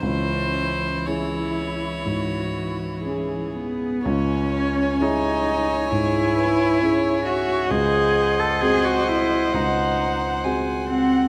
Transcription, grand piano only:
\new Staff \with { instrumentName = "Grand piano" } { \time 4/4 \key cis \minor \tempo 4 = 65 cis,4 <cis' e' gis'>4 gis,4 <cis' e' gis'>4 | cis,4 <cis' e' gis'>4 gis,4 <cis' e' gis'>4 | cis,4 <bis fis' gis'>4 cis,4 <bis fis' gis'>4 | }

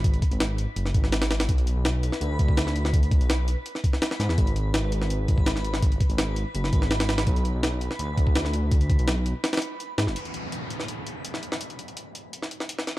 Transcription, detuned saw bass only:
\new Staff \with { instrumentName = "Detuned saw bass" } { \clef bass \time 4/4 \key b \major \tempo 4 = 166 gis,,8 r16 gis,,4 r16 fis,,8 gis,,4. | b,,8. b,,4 r16 d,2~ | d,8. b,,4 r4. r16 gis,16 e,16 | gis,,1~ |
gis,,8 r16 gis,,4 r16 fis,,8 gis,,4. | b,,8. b,,4 r16 d,2~ | d,8. b,,4 r4. r16 gis,16 fis,,16 | r1 |
r1 | }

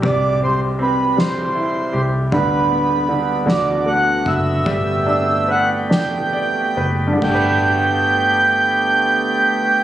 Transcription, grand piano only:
\new Staff \with { instrumentName = "Grand piano" } { \time 6/8 \key g \major \tempo 4. = 50 c8 g8 c'8 g8 e'8 g'8 | d8 b8 d8 d8 a8 b8 | g8 d'8 b'8 d'8 d''8 b'8 | <g, d a d' g' b'>2. | }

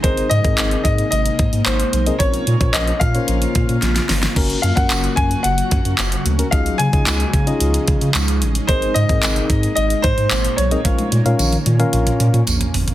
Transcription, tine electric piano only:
\new Staff \with { instrumentName = "Tine electric piano" } { \time 4/4 \key bes \minor \tempo 4 = 111 <c' ees' aes' bes' ees''>8 r16 <c' ees' aes' bes' ees''>4~ <c' ees' aes' bes' ees''>16 r4. r16 <c' ees' aes' bes' ees''>16 | <des' f' bes' des''>8 r16 <des' f' bes' c'' des''>8 r8 <des' f' bes' c'' des''>4~ <des' f' bes' c'' des''>16 r4 | <des' ges' bes'>8 r16 <des' ges' bes'>4~ <des' ges' bes'>16 r4. r16 <des' ges' bes'>16 | <des' ees' f' aes' ees''>8 r16 <des' ees' f' aes' ees''>8 r8 <des' ees' f' aes' ees''>4~ <des' ees' f' aes' ees''>16 r4 |
<c' ees' aes' bes' ees''>8 r16 <c' ees' aes' bes' ees''>4~ <c' ees' aes' bes' ees''>16 r4. r16 <c' ees' aes' bes' ees''>16 | <des' f' bes' c'' f''>8 r16 <des' f' bes' des'' f''>8 r8 <des' f' bes' des'' f''>4~ <des' f' bes' des'' f''>16 r4 | }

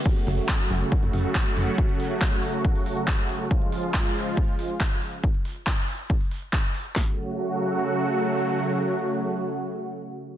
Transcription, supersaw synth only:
\new Staff \with { instrumentName = "Supersaw synth" } { \clef bass \time 4/4 \key fis \minor \tempo 4 = 139 << { <fis a fis'>1~ | <fis a fis'>1 | <eis gis eis'>1 | r1 |
<cis fis a fis'>1~ | <cis fis a fis'>1 | } \\ { cis1~ | cis1~ | cis1 | r1 |
r1 | r1 | } >> }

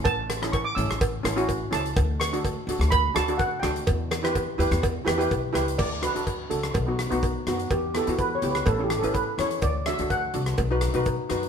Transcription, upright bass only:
\new Staff \with { instrumentName = "Upright bass" } { \clef bass \time 4/4 \key d \major \tempo 4 = 125 a,,4. a,,16 a,,8. a,,4 cis,8 | d,4. d,16 d,8. d,4 d,8 | e,4. e,16 e,8. e,8 b,,8 cis,8 | d,8. d,8. cis,8 b,,8. b,,8 r16 fis,8 |
e,8. e,8. cis,8 a,,8. a,,8 r16 e,8 | d,8. d,8. c,8 b,,8. b,,8 r16 fis,8 | }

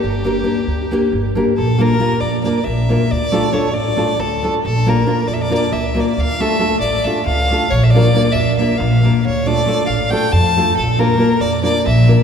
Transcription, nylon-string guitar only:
\new Staff \with { instrumentName = "Nylon-string guitar" } { \time 7/8 \tempo 4 = 137 r8 <bes d' g' bes'>8 <bes d' g' bes'>8 r8 <bes d' g' bes'>8 r8 <bes d' g' bes'>8 | r8 <bes d' f' bes'>8 <bes d' f' bes'>8 r8 <bes d' f' bes'>8 r8 <bes d' f' bes'>8 | r8 <a d' f' a'>8 <a d' f' a'>8 r8 <a d' f' a'>8 r8 <a d' f' a'>8 | r8 <bes d' f' bes'>8 <bes d' f' bes'>8 r8 <bes d' f' bes'>8 r8 <bes d' f' bes'>8 |
r8 <a d' f' a'>8 <a d' f' a'>8 r8 <a d' f' a'>8 r8 <a d' f' a'>8 | r8 <bes d' f' bes'>8 <bes d' f' bes'>8 r8 <bes d' f' bes'>8 r8 <bes d' f' bes'>8 | r8 <a d' f' a'>8 <a d' f' a'>8 r8 <a d' f' a'>8 r8 <a d' f' a'>8 | r8 <bes d' f' bes'>8 <bes d' f' bes'>8 r8 <bes d' f' bes'>8 r8 <bes d' f' bes'>8 | }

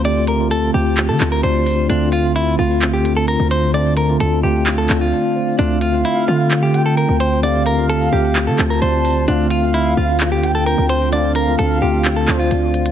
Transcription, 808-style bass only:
\new Staff \with { instrumentName = "808-style bass" } { \clef bass \time 4/4 \key d \minor \tempo 4 = 130 d,4. d,8. d16 d,8 d,4 | d,4. d,4.~ d,16 d,8.~ | d,4 d,8 d,4 d,8 r4 | d,4 r8 d4.~ d16 d,8.~ |
d,4. d,8. d16 d,8 d,4 | d,4. d,4.~ d,16 d,8.~ | d,4 d,8 d,4 d,8 d,4 | }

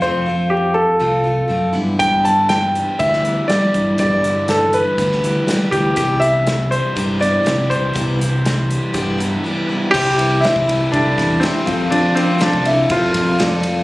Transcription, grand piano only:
\new Staff \with { instrumentName = "Grand piano" } { \time 4/4 \key c \major \tempo 4 = 121 c''4 g'8 a'2 r8 | g''8 a''8 g''4 e''4 d''4 | d''4 a'8 b'2 g'8 | g'8 e''4 c''4 d''4 c''8~ |
c''2. r4 | g'4 e'4 d'4 c'4 | d'8 c'8 d'8 e'8 f'4 r4 | }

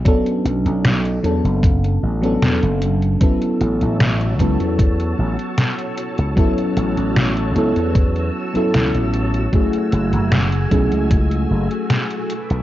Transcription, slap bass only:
\new Staff \with { instrumentName = "Slap bass" } { \clef bass \time 4/4 \key a \major \tempo 4 = 76 r8 b,,16 b,,8. e,16 fis,,8. a,,8 e,16 fis,,8. | r8 a,,16 a,,8. cis,16 e,8. a,,16 r4 cis,16 | r8 a,,16 a,,8. cis,16 e,8. r8 cis,16 a,,8. | r8 fis,,16 fis,,8. b,,16 cis,8. fis,,16 r4 b,,16 | }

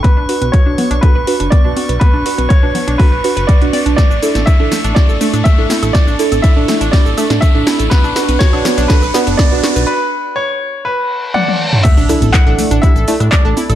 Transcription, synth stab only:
\new Staff \with { instrumentName = "Synth stab" } { \time 4/4 \key b \minor \tempo 4 = 122 r8 <d' fis' b'>8. <d' fis' b'>8. <d' fis' a'>16 r16 <d' fis' b'>16 r8 <d' fis' b'>8.~ | <d' fis' b'>8 <d' fis' b'>8. <d' fis' b'>8. <d' fis' a'>16 r16 <d' fis' b'>16 r8 <d' fis' b'>8. | r8 <d' e' a'>8. <d' e' a'>8. <d' e' g'>16 r16 <d' e' a'>16 r8 <d' e' a'>8.~ | <d' e' a'>8 <d' e' a'>8. <d' e' a'>8. d'16 r16 <d' e' a'>16 r8 <d' e' a'>8. |
r8 <d' fis' b'>8. <d' fis' b'>8. <d' fis' a'>16 r16 <d' fis' b'>16 r8 <d' fis' b'>8. | r1 | r8 <d' e' a'>8. <d' e' a'>8. <d' e' g'>16 r16 <d' e' a'>16 r8 <d' e' a'>8. | }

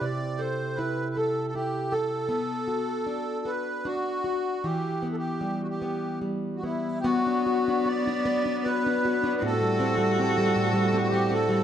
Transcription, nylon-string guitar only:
\new Staff \with { instrumentName = "Nylon-string guitar" } { \time 3/4 \key b \phrygian \tempo 4 = 78 c8 a'8 e'8 a'8 e'8 a'8 | b8 fis'8 d'8 fis'8 d'8 fis'8 | e8 b8 g8 b8 g8 b8 | b16 d'16 fis'16 d'16 fis'16 d'16 b16 d'16 fis'16 d'16 fis'16 d'16 |
a,16 g16 c'16 g16 c'16 g16 a,16 g16 c'16 g16 c'16 g16 | }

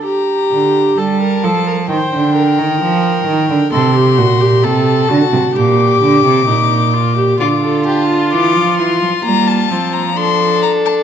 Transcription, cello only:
\new Staff \with { instrumentName = "Cello" } { \clef bass \time 4/4 \key g \minor \tempo 4 = 65 r8 d8 g8 f8 ees16 d8 ees16 f8 ees16 d16 | c8 bes,8 c8 d16 c16 bes,8 d16 c16 bes,4 | \key d \minor d4 e16 f16 e16 f16 g8 f4. | }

